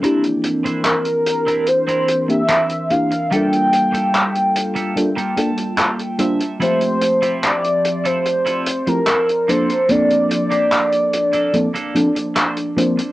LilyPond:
<<
  \new Staff \with { instrumentName = "Soft synth lead" } { \time 4/4 \key g \dorian \tempo 4 = 73 r4 bes'4 c''8. e''8. f''8 | g''2 r2 | c''4 d''8. c''4 bes'8. c''8 | d''2. r4 | }
  \new Staff \with { instrumentName = "Clean electric guitar" } { \time 4/4 \key g \dorian << { r1 | r2 r8 a''8 g''8 e''8 | r1 | r1 | } \\ { <c' d' e' bes'>16 r8 <c' d' e' c''>8 r8 <c' d' e' bes'>16 r16 <c' d' e' bes'>16 r8 <c' d' e' bes'>16 r8. | <bes f' g' a'>16 r8 <bes f' g' a'>8 r8 <bes f' g' a'>16 r16 <bes f' g' a'>16 r8 <bes f' g' a'>16 r8. | <e' f' a'>16 r8 <e' f' g'>8 r8 <e' f' a'>16 r16 <e' f' a'>16 r8 <e' f' a'>16 r16 <bes d' a'>8~ | <bes d' a'>16 r8 <bes d' g'>8 r8 <bes d' a'>16 r16 <bes d' a'>16 r8 <bes d' c''>16 r8. | } >> }
  \new Staff \with { instrumentName = "FM electric piano" } { \time 4/4 \key g \dorian <bes c' d' e' g'>2~ <bes c' d' e' g'>8. <bes c' d' e' g'>16 r8 <bes c' d' e' g'>16 r16 | <g bes d' f' a'>2 <g bes d' f' a'>16 r16 <g bes d' f' a'>16 r8. <g bes d' f' c''>16 r16 | <f a c' g' e''>2~ <f a c' g' e''>8. <f a c' e' g'>16 r8 <f bes c' d' a'>16 r16 | <f bes c' d' a'>2 <f bes c' d' a'>16 r16 <f bes c' d' a'>16 r8. <f bes c' d' c''>16 r16 | }
  \new Staff \with { instrumentName = "Ambient pad" } { \time 4/4 \key g \dorian << { bes'1 | a''1~ | a''1~ | a''1 | } \\ { <e c' d'>1 | <g bes f'>1 | <f c' e''>2.~ <f c' e''>8 <f bes d'>8~ | <f bes d'>1 | } >> }
  \new DrumStaff \with { instrumentName = "Drums" } \drummode { \time 4/4 hh16 hh16 hh16 hh16 <hc hh>16 hh16 hh16 hh16 hh16 hh16 hh16 hh16 <hc hh>16 hh16 hh16 hh16 | hh16 hh16 hh16 hh16 <hc hh>16 hh16 hh16 hh16 hh16 hh16 hh16 hh16 <hc hh>16 hh16 hh16 hh16 | hh16 hh16 hh16 hh16 <hc hh>16 hh16 hh16 hh16 hh16 hh16 hh16 hh16 <hc hh>16 hh16 hh16 hh16 | hh16 hh16 hh16 hh16 <hc hh>16 hh16 hh16 hh16 hh16 hh16 hh16 hh16 <hc hh>16 hh16 hh16 hh16 | }
>>